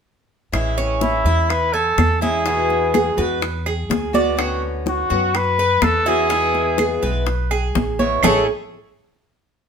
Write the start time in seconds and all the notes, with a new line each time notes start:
0.52 A1 E3 G#3 C#4 E4, high bongo, high conga, claves
0.78 C#4, high conga
1.01 E4, high bongo, high conga
1.24 E2 G#3 C#4 E4, high conga
1.49 B4, muted steel-string acoustic guitar stroke, high bongo, high conga, claves
1.73 A4 G#5, high conga
1.98 E2, high bongo, low bongo, high conga, claves
2.21 G#3 C#4 E4 G#4, high conga
2.45 B2 E3 G#3 B3 E4 F#4, high bongo, high conga
2.70 high bongo, high conga
2.94 G#4, high bongo, high conga, claves
3.17 E2 E3 G#3 B3 F#4 B4, high bongo, high conga
3.41 muted steel-string acoustic guitar stroke, high bongo, high conga
3.66 G#4, high bongo, high conga, claves
3.89 D2, high bongo, low bongo, high conga
4.13 E3 G#3 B3 F#4 D5, high conga
4.37 D3 B3 C#4 F#4, high bongo, high conga, claves
4.62 high conga
4.86 F#4, high bongo, high conga
5.10 F#2 B3 C#4 F#4, high conga
5.35 B4, muted steel-string acoustic guitar stroke, high bongo, high conga, claves
5.58 B4, high conga
5.82 E2 A4, high bongo, low bongo, high conga, claves
6.06 B3 C#4 E4 F#4 G#4
6.29 B2 E3 G#3 B3 E4, high bongo, high conga
6.55 high bongo, high conga
6.78 G#4, high bongo, high conga, claves
7.02 B1 E3 G#3 B3 E4 B4, high bongo, high conga
7.26 muted steel-string acoustic guitar stroke, high bongo, high conga
7.51 G#4, high bongo, high conga, claves
7.75 A1, high bongo, low bongo, high conga
7.99 E3 G#3 B3 E4 C#5, high conga
8.23 A1 A2 E3 G#3 A3 C#4 E4 G#4 C#5, low bongo, low conga, claves